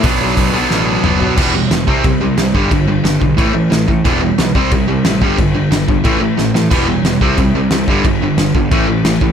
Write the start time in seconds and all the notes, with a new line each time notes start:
0.03 B1 B2 F#3 B3 D4, kick, open hi-hat
0.21 B1
0.37 B1, kick, open hi-hat
0.53 B1 B2 F#3 B3 D4
0.70 A1, snare
1.04 F#1 B2 F#3 B3 D4, mid tom
1.20 B2, floor tom
1.36 E1 E2 B2 E3 G3 B3, kick, crash
1.54 E2 B2 E3 G3
1.71 E1 E2 B2 E3 G3, snare, crash
1.87 C2 C3 G3 C4, kick
2.04 C2 C3 G3, kick, crash
2.21 C2 C3 G3
2.37 C2 C3 G3, snare, crash
2.54 G1 G2 D3 G3, kick
2.71 G1 G2 D3, kick, crash
2.88 G2 D3
3.04 G1 G2 D3, snare, crash
3.20 B1 G2 D3, kick
3.37 A1 A2 E3 A3, kick, crash
3.54 A1 A2 E3
3.70 A1 A2 E3, snare, crash
3.88 A2 E3, kick
4.04 E1 E2 B2 E3 G3 B3, kick, crash
4.21 E2 B2 E3 G3
4.38 B1 E2 B2 E3 G3, snare, crash
4.55 C2 C3 G3 C4, kick
4.71 C2 C3 G3, kick, crash
4.87 C2 C3 G3
5.05 A1 C3 G3, snare, crash
5.21 G1 G2 D3 G3, kick
5.37 G1 G2 D3, kick, crash
5.54 G2 D3
5.70 G1 G2 D3, snare, crash
5.88 G1 G2 D3, kick
6.04 A1 A2 E3 A3, kick, crash
6.21 A1 A2 E3
6.37 A1 A2 E3, snare
6.54 A2 E3, snare
6.70 E1 E2 B2 E3 G3 B3, kick, splash, crash
6.88 E2 B2 E3 G3
7.04 E1 E2 B2 E3 G3, snare, crash
7.21 C2 C3 G3 C4, kick
7.38 C2 C3 G3, kick, crash
7.54 C2 C3 G3
7.71 C2 C3 G3, snare, crash
7.88 G1 G2 D3 G3, kick
8.04 G1 G2 D3, kick, crash
8.22 G2 D3
8.37 G1 G2 D3, snare, crash
8.55 G1 G2 D3, kick
8.71 A1 A2 E3 A3, kick, crash
8.88 A1 A2 E3
9.04 A1 A2 E3, snare, crash
9.21 A2 E3, kick